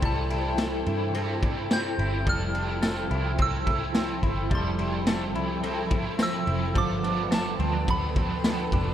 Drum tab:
RD |xxxxxxxx|xxxxxxxx|xxxxxxxx|xxxxxxxx|
TB |--x---x-|--x---x-|--x---x-|--x---x-|
SD |--o---o-|--o---o-|--o---o-|--o---o-|
BD |o----o--|o---oo-o|o----o--|o---oo-o|